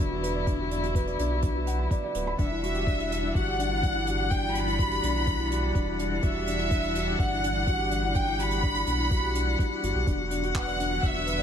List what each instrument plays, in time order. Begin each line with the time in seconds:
Already playing: analog synth bass E1, string quartet D3 F#3 B3 E4, felt piano F#4 B4 D5
0.00 felt piano D4
0.11 felt piano F#4
0.23 felt piano B4, closed hi-hat
0.35 felt piano D5
0.47 felt piano D4, kick, closed hi-hat
0.59 felt piano F#4
0.71 felt piano D4, closed hi-hat
0.83 felt piano F#4, closed hi-hat
0.95 felt piano B4, kick, closed hi-hat
1.07 felt piano D5, closed hi-hat
1.19 analog synth bass B1, felt piano D4, closed hi-hat
1.31 felt piano F#4
1.42 felt piano D4, kick, closed hi-hat
1.55 felt piano F#4
1.67 felt piano F#5, closed hi-hat
1.79 felt piano B5
1.91 felt piano D5, kick, closed hi-hat
2.03 felt piano D5
2.15 analog synth bass D1, felt piano B4, closed hi-hat
2.27 felt piano B5
2.39 analog synth bass E1, string quartet E3 G3 D4 F#5, felt piano D4, violin section E5, kick, closed hi-hat
2.51 felt piano E4
2.63 felt piano F#4, closed hi-hat
2.74 felt piano G4, closed hi-hat
2.87 felt piano D4, kick, closed hi-hat
2.99 felt piano E4, closed hi-hat
3.11 felt piano D4, closed hi-hat
3.23 felt piano E4
3.35 analog synth bass G1, felt piano F#4, violin section F#5, kick, closed hi-hat
3.47 felt piano G4
3.59 felt piano D4, closed hi-hat
3.71 felt piano E4
3.83 felt piano D4, kick, closed hi-hat
3.95 felt piano E4
4.07 felt piano F#4, closed hi-hat
4.19 felt piano G4
4.31 felt piano D4, violin section G5, kick, closed hi-hat
4.43 felt piano E4
4.55 felt piano D4, violin section B5, closed hi-hat
4.67 felt piano E4, closed hi-hat
4.79 felt piano F#4, kick, closed hi-hat
4.91 felt piano G4, closed hi-hat
5.03 analog synth bass B1, felt piano D4, closed hi-hat
5.15 felt piano E4
5.26 felt piano D4, kick, closed hi-hat
5.39 felt piano E4
5.51 felt piano F#4, closed hi-hat
5.63 felt piano G4
5.75 analog synth bass E1, felt piano D4, kick, closed hi-hat
5.87 felt piano E4
5.99 felt piano D4, closed hi-hat
6.11 felt piano E4
6.22 analog synth bass E1, felt piano F#4, violin section E5, kick, closed hi-hat
6.35 felt piano G4
6.47 felt piano D4, closed hi-hat
6.59 felt piano E4, closed hi-hat
6.71 felt piano D4, kick, closed hi-hat
6.83 felt piano E4, closed hi-hat
6.95 felt piano F#4, closed hi-hat
7.07 felt piano G4
7.19 analog synth bass G1, felt piano D4, violin section F#5, kick, closed hi-hat
7.31 felt piano E4
7.43 felt piano D4, closed hi-hat
7.55 felt piano E4
7.67 felt piano F#4, kick, closed hi-hat
7.79 felt piano G4
7.91 felt piano D4, closed hi-hat
8.03 felt piano E4
8.15 felt piano D4, violin section G5, kick, closed hi-hat
8.27 felt piano E4
8.39 felt piano F#4, violin section B5, closed hi-hat
8.51 felt piano G4, closed hi-hat
8.63 felt piano D4, kick, closed hi-hat
8.75 felt piano E4, closed hi-hat
8.87 analog synth bass B1, felt piano D4, closed hi-hat
8.99 felt piano E4
9.11 felt piano F#4, kick, closed hi-hat
9.23 felt piano G4
9.34 felt piano D4, closed hi-hat
9.47 felt piano E4
9.58 felt piano D4, kick, closed hi-hat
9.71 felt piano E4
9.83 analog synth bass G1, felt piano F#4, closed hi-hat
9.95 analog synth bass B1, felt piano G4
10.06 analog synth bass E1, string quartet D3 F#3 B3, felt piano D4, kick, closed hi-hat
10.18 felt piano F#4
10.31 felt piano D4, closed hi-hat
10.43 felt piano F#4, closed hi-hat
10.55 felt piano B4, violin section F#5, kick, clap
10.67 felt piano D5, closed hi-hat
10.78 felt piano D4, closed hi-hat
10.90 felt piano F#4
11.03 analog synth bass E1, felt piano D4, violin section E5, kick, closed hi-hat
11.15 felt piano F#4
11.27 felt piano B4, closed hi-hat
11.39 felt piano D5